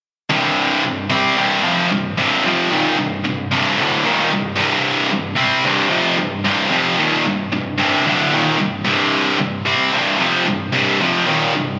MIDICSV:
0, 0, Header, 1, 2, 480
1, 0, Start_track
1, 0, Key_signature, -3, "minor"
1, 0, Tempo, 535714
1, 259, Time_signature, 4, 2, 24, 8
1, 10567, End_track
2, 0, Start_track
2, 0, Title_t, "Distorted electric guitar"
2, 0, Program_c, 0, 30
2, 266, Note_on_c, 0, 36, 100
2, 269, Note_on_c, 0, 43, 92
2, 279, Note_on_c, 0, 48, 104
2, 735, Note_off_c, 0, 36, 0
2, 737, Note_off_c, 0, 43, 0
2, 742, Note_off_c, 0, 48, 0
2, 746, Note_on_c, 0, 43, 66
2, 748, Note_on_c, 0, 36, 65
2, 934, Note_off_c, 0, 43, 0
2, 936, Note_off_c, 0, 36, 0
2, 984, Note_on_c, 0, 48, 95
2, 993, Note_on_c, 0, 55, 103
2, 994, Note_on_c, 0, 60, 102
2, 1214, Note_off_c, 0, 48, 0
2, 1218, Note_off_c, 0, 55, 0
2, 1219, Note_off_c, 0, 60, 0
2, 1221, Note_on_c, 0, 36, 83
2, 1233, Note_on_c, 0, 43, 81
2, 1234, Note_on_c, 0, 48, 99
2, 1453, Note_off_c, 0, 36, 0
2, 1454, Note_off_c, 0, 48, 0
2, 1459, Note_off_c, 0, 43, 0
2, 1461, Note_on_c, 0, 41, 86
2, 1465, Note_on_c, 0, 48, 85
2, 1470, Note_on_c, 0, 53, 90
2, 1692, Note_off_c, 0, 41, 0
2, 1694, Note_off_c, 0, 48, 0
2, 1697, Note_off_c, 0, 53, 0
2, 1715, Note_on_c, 0, 36, 59
2, 1720, Note_on_c, 0, 43, 67
2, 1899, Note_off_c, 0, 36, 0
2, 1901, Note_off_c, 0, 43, 0
2, 1948, Note_on_c, 0, 36, 86
2, 1948, Note_on_c, 0, 43, 94
2, 1959, Note_on_c, 0, 48, 101
2, 2176, Note_off_c, 0, 36, 0
2, 2176, Note_off_c, 0, 43, 0
2, 2182, Note_off_c, 0, 48, 0
2, 2186, Note_on_c, 0, 41, 89
2, 2200, Note_on_c, 0, 48, 101
2, 2205, Note_on_c, 0, 53, 113
2, 2415, Note_off_c, 0, 41, 0
2, 2422, Note_off_c, 0, 48, 0
2, 2424, Note_off_c, 0, 53, 0
2, 2432, Note_on_c, 0, 39, 77
2, 2433, Note_on_c, 0, 46, 85
2, 2439, Note_on_c, 0, 51, 101
2, 2658, Note_off_c, 0, 39, 0
2, 2658, Note_off_c, 0, 46, 0
2, 2662, Note_off_c, 0, 51, 0
2, 2673, Note_on_c, 0, 36, 63
2, 2675, Note_on_c, 0, 43, 71
2, 2858, Note_off_c, 0, 36, 0
2, 2858, Note_off_c, 0, 43, 0
2, 2907, Note_on_c, 0, 36, 68
2, 2913, Note_on_c, 0, 43, 78
2, 3094, Note_off_c, 0, 36, 0
2, 3098, Note_off_c, 0, 43, 0
2, 3147, Note_on_c, 0, 36, 98
2, 3155, Note_on_c, 0, 43, 82
2, 3157, Note_on_c, 0, 48, 95
2, 3376, Note_off_c, 0, 36, 0
2, 3379, Note_off_c, 0, 43, 0
2, 3380, Note_off_c, 0, 48, 0
2, 3381, Note_on_c, 0, 38, 98
2, 3385, Note_on_c, 0, 45, 86
2, 3392, Note_on_c, 0, 50, 92
2, 3612, Note_off_c, 0, 38, 0
2, 3614, Note_off_c, 0, 45, 0
2, 3618, Note_off_c, 0, 50, 0
2, 3618, Note_on_c, 0, 39, 94
2, 3630, Note_on_c, 0, 46, 99
2, 3636, Note_on_c, 0, 51, 108
2, 3848, Note_off_c, 0, 39, 0
2, 3851, Note_off_c, 0, 46, 0
2, 3852, Note_on_c, 0, 36, 64
2, 3854, Note_on_c, 0, 43, 69
2, 3860, Note_off_c, 0, 51, 0
2, 4047, Note_off_c, 0, 36, 0
2, 4048, Note_off_c, 0, 43, 0
2, 4082, Note_on_c, 0, 36, 95
2, 4088, Note_on_c, 0, 43, 99
2, 4099, Note_on_c, 0, 48, 101
2, 4562, Note_off_c, 0, 36, 0
2, 4565, Note_off_c, 0, 43, 0
2, 4571, Note_off_c, 0, 48, 0
2, 4575, Note_on_c, 0, 36, 63
2, 4579, Note_on_c, 0, 43, 68
2, 4768, Note_off_c, 0, 36, 0
2, 4770, Note_off_c, 0, 43, 0
2, 4804, Note_on_c, 0, 48, 88
2, 4815, Note_on_c, 0, 55, 90
2, 4817, Note_on_c, 0, 60, 95
2, 5043, Note_off_c, 0, 48, 0
2, 5049, Note_off_c, 0, 55, 0
2, 5050, Note_off_c, 0, 60, 0
2, 5057, Note_on_c, 0, 36, 85
2, 5064, Note_on_c, 0, 43, 87
2, 5074, Note_on_c, 0, 48, 94
2, 5275, Note_off_c, 0, 48, 0
2, 5277, Note_off_c, 0, 36, 0
2, 5280, Note_on_c, 0, 41, 92
2, 5282, Note_off_c, 0, 43, 0
2, 5286, Note_on_c, 0, 48, 89
2, 5291, Note_on_c, 0, 53, 84
2, 5521, Note_off_c, 0, 41, 0
2, 5524, Note_off_c, 0, 48, 0
2, 5527, Note_off_c, 0, 53, 0
2, 5534, Note_on_c, 0, 43, 72
2, 5540, Note_on_c, 0, 36, 60
2, 5727, Note_off_c, 0, 43, 0
2, 5730, Note_off_c, 0, 36, 0
2, 5776, Note_on_c, 0, 36, 88
2, 5780, Note_on_c, 0, 43, 81
2, 5788, Note_on_c, 0, 48, 100
2, 6000, Note_off_c, 0, 48, 0
2, 6002, Note_off_c, 0, 36, 0
2, 6006, Note_on_c, 0, 41, 79
2, 6007, Note_off_c, 0, 43, 0
2, 6010, Note_on_c, 0, 48, 93
2, 6020, Note_on_c, 0, 53, 103
2, 6244, Note_off_c, 0, 41, 0
2, 6246, Note_off_c, 0, 48, 0
2, 6249, Note_on_c, 0, 39, 90
2, 6251, Note_off_c, 0, 53, 0
2, 6257, Note_on_c, 0, 46, 82
2, 6263, Note_on_c, 0, 51, 96
2, 6485, Note_off_c, 0, 39, 0
2, 6489, Note_off_c, 0, 46, 0
2, 6492, Note_off_c, 0, 51, 0
2, 6496, Note_on_c, 0, 36, 62
2, 6504, Note_on_c, 0, 43, 66
2, 6688, Note_off_c, 0, 36, 0
2, 6692, Note_off_c, 0, 43, 0
2, 6738, Note_on_c, 0, 36, 59
2, 6740, Note_on_c, 0, 43, 73
2, 6929, Note_off_c, 0, 36, 0
2, 6930, Note_off_c, 0, 43, 0
2, 6971, Note_on_c, 0, 36, 85
2, 6978, Note_on_c, 0, 43, 95
2, 6987, Note_on_c, 0, 48, 90
2, 7206, Note_off_c, 0, 36, 0
2, 7209, Note_off_c, 0, 43, 0
2, 7214, Note_off_c, 0, 48, 0
2, 7224, Note_on_c, 0, 38, 85
2, 7230, Note_on_c, 0, 45, 85
2, 7242, Note_on_c, 0, 50, 93
2, 7452, Note_off_c, 0, 38, 0
2, 7455, Note_off_c, 0, 45, 0
2, 7460, Note_on_c, 0, 39, 93
2, 7461, Note_off_c, 0, 50, 0
2, 7470, Note_on_c, 0, 46, 87
2, 7474, Note_on_c, 0, 51, 93
2, 7684, Note_off_c, 0, 39, 0
2, 7688, Note_on_c, 0, 36, 61
2, 7694, Note_off_c, 0, 46, 0
2, 7697, Note_off_c, 0, 51, 0
2, 7698, Note_on_c, 0, 43, 70
2, 7883, Note_off_c, 0, 36, 0
2, 7888, Note_off_c, 0, 43, 0
2, 7924, Note_on_c, 0, 36, 85
2, 7930, Note_on_c, 0, 48, 101
2, 7931, Note_on_c, 0, 43, 101
2, 8400, Note_off_c, 0, 43, 0
2, 8402, Note_off_c, 0, 36, 0
2, 8405, Note_off_c, 0, 48, 0
2, 8411, Note_on_c, 0, 43, 67
2, 8414, Note_on_c, 0, 36, 65
2, 8604, Note_off_c, 0, 43, 0
2, 8606, Note_off_c, 0, 36, 0
2, 8652, Note_on_c, 0, 48, 86
2, 8655, Note_on_c, 0, 55, 99
2, 8665, Note_on_c, 0, 60, 109
2, 8885, Note_on_c, 0, 36, 80
2, 8886, Note_off_c, 0, 48, 0
2, 8887, Note_off_c, 0, 55, 0
2, 8892, Note_off_c, 0, 60, 0
2, 8899, Note_on_c, 0, 48, 84
2, 8900, Note_on_c, 0, 43, 86
2, 9122, Note_off_c, 0, 36, 0
2, 9123, Note_off_c, 0, 48, 0
2, 9130, Note_off_c, 0, 43, 0
2, 9133, Note_on_c, 0, 41, 82
2, 9134, Note_on_c, 0, 48, 84
2, 9143, Note_on_c, 0, 53, 106
2, 9363, Note_off_c, 0, 41, 0
2, 9367, Note_off_c, 0, 48, 0
2, 9367, Note_on_c, 0, 36, 65
2, 9371, Note_off_c, 0, 53, 0
2, 9374, Note_on_c, 0, 43, 71
2, 9562, Note_off_c, 0, 36, 0
2, 9566, Note_off_c, 0, 43, 0
2, 9608, Note_on_c, 0, 36, 90
2, 9616, Note_on_c, 0, 43, 90
2, 9623, Note_on_c, 0, 48, 92
2, 9844, Note_off_c, 0, 36, 0
2, 9848, Note_off_c, 0, 43, 0
2, 9851, Note_off_c, 0, 48, 0
2, 9858, Note_on_c, 0, 41, 91
2, 9864, Note_on_c, 0, 48, 103
2, 9870, Note_on_c, 0, 53, 105
2, 10086, Note_off_c, 0, 41, 0
2, 10090, Note_on_c, 0, 39, 85
2, 10091, Note_off_c, 0, 48, 0
2, 10095, Note_off_c, 0, 53, 0
2, 10096, Note_on_c, 0, 46, 86
2, 10106, Note_on_c, 0, 51, 99
2, 10325, Note_off_c, 0, 39, 0
2, 10327, Note_off_c, 0, 46, 0
2, 10332, Note_off_c, 0, 51, 0
2, 10339, Note_on_c, 0, 36, 64
2, 10346, Note_on_c, 0, 43, 74
2, 10528, Note_off_c, 0, 36, 0
2, 10532, Note_off_c, 0, 43, 0
2, 10567, End_track
0, 0, End_of_file